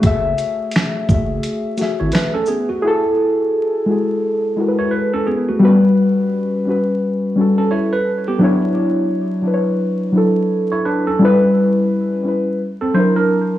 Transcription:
0.00 0.33 F#1 loud
0.00 0.25 A3 medium
0.00 1.09 A3 loud
0.00 0.03 F#4 medium
0.00 0.24 F#4 medium
0.00 0.93 F#4 medium
0.00 0.05 G#4 medium
0.00 2.85 C#5 loud
0.00 0.06 E5 loud
0.00 kick loud
0.00 closed hi-hat medium
0.05 0.94 G#4 medium
0.05 0.95 E5 loud
0.38 closed hi-hat soft
0.38 shaker soft
0.71 closed hi-hat medium
0.76 finger snap medium
0.76 snare loud
1.09 1.39 F#1 medium
1.09 1.69 A3 medium
1.09 1.70 F#4 medium
1.09 1.71 G#4 medium
1.09 kick medium
1.09 shaker soft
1.14 1.72 E5 medium
1.43 closed hi-hat medium
1.77 2.67 A3 medium
1.77 2.68 F#4 medium
1.77 2.69 G#4 medium
1.77 closed hi-hat soft
1.77 shaker soft
1.81 2.70 E5 medium
1.81 snare soft
2.00 2.12 G#1 medium
2.00 2.13 E4 medium
2.00 2.12 C#5 medium
2.12 2.34 B4 medium
2.12 finger snap medium
2.12 snare loud
2.12 closed hi-hat medium
2.34 2.47 C#4 medium
2.34 2.47 A4 medium
2.46 2.69 B3 medium
2.46 2.69 G#4 medium
2.46 shaker soft
2.69 3.03 A3 medium
2.69 3.03 F#4 medium
2.82 3.73 E4 loud
2.82 3.74 F#4 medium
2.82 3.72 G#4 loud
2.87 3.75 A4 loud
3.86 4.47 G#3 medium
3.86 4.48 E4 medium
3.86 4.49 F#4 medium
3.92 4.50 G#4 medium
4.57 5.46 G#3 medium
4.57 5.47 E4 medium
4.57 5.48 F#4 medium
4.62 4.68 A#4 medium
4.68 5.52 B4 medium
4.79 4.92 E4 medium
4.79 4.91 C#5 medium
4.91 5.12 B4 medium
5.13 5.26 C#4 medium
5.13 5.26 A4 medium
5.27 5.48 B3 medium
5.27 5.47 G#4 medium
5.49 5.82 A3 medium
5.49 5.82 F#4 medium
5.59 6.50 G3 loud
5.59 5.70 B3 medium
5.59 6.52 F#4 loud
5.65 6.54 C#4 medium
5.65 6.53 B4 loud
6.65 7.26 G3 medium
6.65 7.27 C#4 medium
6.65 7.28 F#4 medium
6.70 7.29 B4 medium
7.36 8.26 G3 medium
7.36 8.26 C#4 medium
7.36 8.27 F#4 medium
7.41 8.28 A4 medium
7.58 7.71 C#4 medium
7.58 7.71 A4 medium
7.71 7.92 E4 medium
7.71 7.92 C#5 medium
7.93 8.26 B4 medium
8.28 8.61 B3 medium
8.28 8.61 G4 medium
8.39 9.29 F#3 loud
8.39 9.30 D4 loud
8.39 9.31 E4 loud
8.44 9.32 C#5 loud
9.42 10.04 F#3 medium
9.42 10.05 D4 medium
9.42 10.06 E4 medium
9.47 9.55 B4 medium
9.54 10.10 C#5 medium
10.12 11.03 F#3 medium
10.12 11.04 D4 medium
10.12 11.05 E4 medium
10.17 11.06 A4 medium
10.72 10.85 E4 medium
10.72 10.84 C#5 medium
10.85 11.06 D4 medium
10.85 11.06 B4 medium
11.07 11.40 C#4 medium
11.07 11.40 A4 medium
11.19 12.09 G3 loud
11.19 12.10 C#4 loud
11.19 12.11 E4 loud
11.24 12.12 B4 loud
12.23 12.59 G3 medium
12.23 12.60 C#4 medium
12.23 12.61 E4 medium
12.28 12.61 B4 medium
12.81 12.94 C4 medium
12.81 12.94 A4 medium
12.94 13.59 F#3 medium
12.94 13.59 D4 medium
12.94 13.15 E4 medium
12.94 13.59 E4 medium
12.94 13.15 C5 medium
12.99 13.59 A#4 medium
13.16 13.59 D4 medium
13.16 13.59 A#4 medium

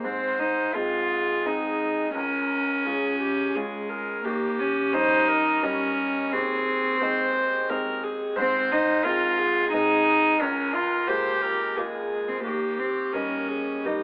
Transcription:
0.04 0.72 G#2 soft
0.04 0.41 C4 medium
0.04 0.77 C5 soft
0.39 0.76 D#4 medium
0.75 1.41 G#3 soft
0.75 1.41 C4 soft
0.75 1.42 D#4 soft
0.75 1.47 F4 medium
0.75 2.14 G#4 soft
1.46 2.12 G#3 soft
1.46 2.12 C4 soft
1.46 2.15 D#4 medium
1.46 2.12 D#4 soft
2.15 2.83 C#2 soft
2.15 3.58 C#4 medium
2.15 2.87 A#4 soft
2.86 3.51 G#3 soft
2.86 3.52 C#4 soft
2.86 3.52 F4 soft
2.86 3.21 G#4 medium
3.21 3.57 G4 soft
3.55 4.21 G#3 soft
3.55 4.25 G#3 medium
3.55 4.21 C#4 soft
3.55 4.21 F4 soft
3.55 3.91 G#4 soft
3.89 4.26 A#4 soft
4.25 4.92 D#2 soft
4.25 4.61 A#3 medium
4.25 4.95 G4 medium
4.59 4.95 C#4 medium
4.93 5.59 G3 soft
4.93 5.59 C#4 soft
4.93 5.64 D#4 medium
4.93 5.59 D#4 soft
4.93 5.30 C5 medium
5.28 6.34 A#4 medium
5.63 6.28 G3 soft
5.63 6.35 C#4 medium
5.63 6.28 C#4 soft
5.63 6.29 D#4 soft
6.32 6.99 D#2 medium
6.32 7.70 C4 medium
6.32 7.00 G#4 medium
7.01 7.66 G#3 soft
7.01 7.66 C4 soft
7.01 7.66 D#4 soft
7.01 7.71 C5 medium
7.70 8.33 G#3 soft
7.70 8.33 C4 soft
7.70 8.34 D#4 soft
7.70 8.05 A#4 medium
8.04 8.38 G#4 medium
8.36 9.03 G#2 medium
8.36 8.73 C4 medium
8.36 9.05 C5 medium
8.72 9.06 D#4 medium
9.04 9.69 G#3 soft
9.04 9.69 C4 soft
9.04 9.69 D#4 soft
9.04 9.72 F4 medium
9.04 9.40 A#4 medium
9.38 10.40 G#4 medium
9.72 10.37 G#3 soft
9.72 10.37 C4 soft
9.72 10.43 D#4 medium
9.72 10.37 D#4 soft
10.40 11.06 C#2 medium
10.40 10.76 C#4 medium
10.40 11.09 A#4 medium
10.74 11.10 F4 medium
11.08 11.73 G#3 soft
11.08 11.73 A#3 soft
11.08 11.73 F4 soft
11.08 11.79 G4 medium
11.08 11.43 C5 medium
11.42 11.78 A#4 medium
11.76 12.41 G#3 soft
11.76 12.30 G#3 medium
11.76 12.41 A#3 soft
11.76 12.42 F4 soft
11.76 12.43 G#4 medium
12.28 12.44 C4 medium
12.44 13.12 D#2 soft
12.44 12.80 A#3 medium
12.44 13.15 G4 medium
12.79 13.15 C4 medium
13.13 13.81 G3 soft
13.13 13.81 A#3 soft
13.13 13.87 C#4 medium
13.13 13.81 D#4 soft
13.13 13.50 A#4 soft
13.49 13.86 G#4 soft
13.85 14.03 G3 soft
13.85 14.03 A#3 soft
13.85 14.03 D#4 medium
13.85 14.03 D#4 soft
13.85 14.03 G4 soft

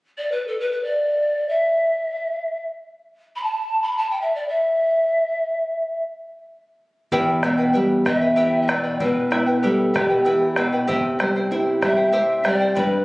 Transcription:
0.17 0.31 D5 medium
0.31 0.48 B4 medium
0.47 0.61 A4 medium
0.59 0.70 B4 medium
0.71 0.85 B4 medium
0.83 1.50 D5 medium
1.48 2.63 E5 medium
3.35 3.44 B5 medium
3.43 3.83 A5 medium
3.82 3.99 B5 medium
3.97 4.12 A5 medium
4.10 4.20 G5 medium
4.21 4.33 E5 medium
4.34 4.47 D5 medium
4.48 6.01 E5 medium
7.12 8.96 E2 medium
7.12 7.42 E4 medium
7.12 7.43 G4 medium
7.12 7.43 B4 medium
7.12 7.41 E5 medium
7.12 7.43 G5 medium
7.12 bombo low medium
7.43 7.74 B2 soft
7.43 7.58 E4 medium
7.43 7.57 B4 medium
7.43 7.58 E5 medium
7.43 7.56 G5 medium
7.43 bombo rim medium
7.58 7.72 E4 soft
7.58 7.73 B4 medium
7.58 7.73 G5 soft
7.73 8.05 G3 medium
7.73 8.05 E4 medium
7.73 8.04 B4 medium
7.73 8.04 E5 medium
7.73 8.05 G5 medium
8.05 8.37 B2 soft
8.05 8.21 E4 soft
8.05 8.20 B4 medium
8.05 8.21 E5 soft
8.05 8.61 E5 medium
8.05 8.20 G5 medium
8.05 bombo rim medium
8.05 bombo low medium
8.21 8.36 E4 soft
8.21 8.36 B4 soft
8.21 8.36 G5 soft
8.36 8.68 E3 soft
8.36 8.67 E4 medium
8.36 8.68 G4 medium
8.36 8.67 B4 medium
8.36 8.66 E5 medium
8.36 8.67 G5 medium
8.54 bombo rim soft
8.61 8.72 E5 medium
8.68 8.99 B2 soft
8.68 8.83 E4 medium
8.68 8.83 B4 medium
8.68 9.04 D5 medium
8.68 8.84 E5 medium
8.68 8.82 G5 medium
8.68 bombo rim medium
8.83 8.99 E4 soft
8.83 9.00 B4 soft
8.83 8.99 G5 soft
9.00 9.93 B2 medium
9.00 9.30 E4 medium
9.00 9.31 B4 medium
9.00 9.67 B4 medium
9.00 9.29 E5 soft
9.00 9.31 G5 medium
9.00 bombo low medium
9.31 9.47 E4 medium
9.31 9.62 E4 soft
9.31 9.47 B4 medium
9.31 9.46 E5 medium
9.31 9.45 G5 medium
9.31 bombo rim medium
9.46 9.62 E4 soft
9.46 9.62 B4 soft
9.46 9.62 G5 soft
9.63 9.94 G3 medium
9.63 9.94 E4 medium
9.63 9.94 G4 medium
9.63 9.99 A4 medium
9.63 9.94 B4 medium
9.63 9.93 E5 medium
9.63 9.94 G5 medium
9.94 10.24 B2 soft
9.94 10.09 E4 medium
9.94 10.66 G4 medium
9.94 10.09 B4 medium
9.94 10.09 E5 medium
9.94 10.08 G5 medium
9.94 bombo rim medium
9.94 bombo low medium
10.09 10.24 E4 soft
10.09 10.24 B4 soft
10.09 10.25 G5 soft
10.24 10.56 E3 soft
10.24 10.56 E4 medium
10.24 10.56 B4 soft
10.24 10.55 E5 soft
10.24 10.56 G5 medium
10.43 bombo rim soft
10.56 10.87 B2 medium
10.56 10.72 E4 medium
10.56 10.72 B4 medium
10.56 10.72 E5 soft
10.56 10.71 G5 medium
10.56 bombo rim medium
10.72 10.87 E4 soft
10.72 10.87 B4 medium
10.72 10.87 G5 medium
10.87 12.72 C3 medium
10.87 11.19 E4 medium
10.87 11.19 G4 medium
10.87 11.19 C5 medium
10.87 11.18 E5 medium
10.87 11.19 G5 medium
10.87 bombo low medium
11.19 11.50 G3 soft
11.19 11.35 E4 medium
11.19 11.35 C5 medium
11.19 11.35 E5 medium
11.19 11.34 G5 medium
11.19 bombo rim medium
11.35 11.50 E4 soft
11.35 11.50 C5 soft
11.35 11.51 G5 soft
11.51 11.81 E4 medium
11.51 11.81 E4 soft
11.51 11.81 C5 medium
11.51 11.80 E5 medium
11.51 11.81 G5 medium
11.81 12.13 G3 soft
11.81 11.96 E4 medium
11.81 11.95 C5 medium
11.81 11.97 E5 soft
11.81 12.48 E5 medium
11.81 11.95 G5 medium
11.81 bombo rim medium
11.81 bombo low medium
11.96 12.12 E4 soft
11.96 12.12 C5 soft
11.96 12.12 G5 soft
12.12 12.44 C4 soft
12.12 12.43 E4 medium
12.12 12.44 G4 medium
12.12 12.43 C5 medium
12.12 12.42 E5 medium
12.12 12.44 G5 medium
12.30 bombo rim soft
12.44 12.75 G3 soft
12.44 12.60 E4 soft
12.44 12.60 C5 medium
12.44 12.78 D5 medium
12.44 12.60 E5 soft
12.44 12.59 G5 medium
12.44 bombo rim medium
12.60 12.75 E4 soft
12.60 12.76 C5 soft
12.60 12.74 G5 soft
12.75 13.05 G2 medium
12.75 13.05 B4 medium
12.75 13.05 D5 medium
12.75 13.05 G5 medium
12.75 13.05 B5 medium
12.75 bombo rim soft
12.75 bombo low medium
12.93 bombo rim soft

